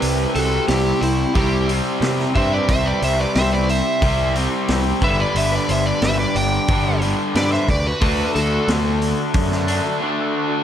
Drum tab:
HH |o-o-o-o-o-o-o-o-|o-o-o-o-o-o-o-o-|o-o-o-o-o-o-o-o-|o-o-o-o-o-o-----|
SD |----o-------oo--|----o-------o---|----o-------oo--|----o----o------|
BD |--------o-----o-|o-------o-----o-|--------o-----o-|o-------o-------|